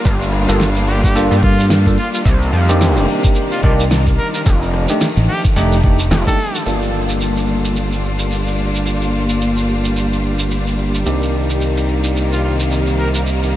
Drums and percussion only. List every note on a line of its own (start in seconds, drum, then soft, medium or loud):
0.05 kick loud
0.05 closed hi-hat medium
0.05 shekere medium
0.22 shekere soft
0.33 cross-stick soft
0.48 closed hi-hat medium
0.48 shekere medium
0.60 snare loud
0.60 shekere medium
0.76 closed hi-hat medium
0.76 shekere soft
0.87 open hi-hat medium
1.04 kick loud
1.04 closed hi-hat medium
1.04 shekere medium
1.15 closed hi-hat medium
1.15 shekere medium
1.32 shekere soft
1.43 kick loud
1.43 closed hi-hat soft
1.59 closed hi-hat soft
1.59 shekere medium
1.70 snare loud
1.70 closed hi-hat medium
1.70 shekere medium
1.86 kick medium
1.86 shekere soft
1.98 open hi-hat medium
2.14 closed hi-hat soft
2.14 shekere medium
2.25 kick loud
2.25 closed hi-hat medium
2.25 shekere medium
2.42 shekere soft
2.53 cross-stick soft
2.69 closed hi-hat soft
2.69 shekere medium
2.81 snare loud
2.81 shekere medium
2.97 closed hi-hat medium
2.97 shekere soft
3.09 open hi-hat medium
3.24 kick loud
3.24 closed hi-hat medium
3.24 shekere medium
3.35 closed hi-hat medium
3.35 shekere medium
3.52 shekere soft
3.63 kick loud
3.72 cross-stick soft
3.80 closed hi-hat soft
3.80 shekere medium
3.91 snare loud
3.91 closed hi-hat medium
3.91 shekere medium
4.07 kick medium
4.07 shekere soft
4.19 open hi-hat medium
4.34 closed hi-hat soft
4.34 shekere medium
4.46 kick loud
4.46 closed hi-hat medium
4.46 shekere medium
4.62 shekere soft
4.74 cross-stick soft
4.74 closed hi-hat soft
4.89 closed hi-hat medium
4.89 shekere medium
5.01 snare loud
5.01 shekere medium
5.09 closed hi-hat medium
5.17 shekere soft
5.29 open hi-hat medium
5.44 kick medium
5.44 closed hi-hat medium
5.44 shekere medium
5.56 closed hi-hat medium
5.56 shekere medium
5.72 shekere soft
5.84 kick loud
5.84 closed hi-hat soft
5.99 closed hi-hat soft
5.99 shekere medium
6.11 snare loud
6.11 closed hi-hat medium
6.11 shekere medium
6.27 kick medium
6.27 snare soft
6.27 shekere soft
6.39 open hi-hat medium
6.55 closed hi-hat medium
6.55 shekere medium
6.66 closed hi-hat medium
6.66 shekere medium
6.82 shekere soft
7.09 closed hi-hat soft
7.09 shekere medium
7.21 shekere medium
7.37 closed hi-hat medium
7.37 shekere soft
7.49 closed hi-hat soft
7.65 closed hi-hat soft
7.65 shekere medium
7.76 closed hi-hat medium
7.76 shekere medium
7.92 shekere soft
8.04 closed hi-hat soft
8.19 closed hi-hat soft
8.19 shekere medium
8.31 closed hi-hat medium
8.31 shekere medium
8.47 shekere soft
8.58 closed hi-hat medium
8.74 closed hi-hat soft
8.74 shekere medium
8.86 closed hi-hat medium
8.86 shekere medium
9.02 shekere soft
9.29 closed hi-hat soft
9.29 shekere medium
9.41 shekere medium
9.57 closed hi-hat medium
9.57 shekere soft
9.68 closed hi-hat soft
9.84 closed hi-hat medium
9.84 shekere medium
9.96 closed hi-hat medium
9.96 shekere medium
10.13 shekere soft
10.24 closed hi-hat soft
10.39 closed hi-hat soft
10.39 shekere medium
10.51 closed hi-hat medium
10.51 shekere medium
10.67 shekere soft
10.79 closed hi-hat medium
10.95 closed hi-hat soft
10.95 shekere medium
11.06 closed hi-hat medium
11.06 shekere medium
11.23 shekere soft
11.50 closed hi-hat medium
11.50 shekere medium
11.61 shekere medium
11.77 closed hi-hat medium
11.77 shekere soft
11.89 closed hi-hat soft
12.04 closed hi-hat medium
12.04 shekere medium
12.17 closed hi-hat medium
12.17 shekere medium
12.33 shekere soft
12.44 closed hi-hat soft
12.60 closed hi-hat medium
12.60 shekere medium
12.71 closed hi-hat medium
12.71 shekere medium
12.87 shekere soft
13.00 closed hi-hat medium
13.15 closed hi-hat soft
13.15 shekere medium
13.27 closed hi-hat medium
13.27 shekere medium
13.43 shekere soft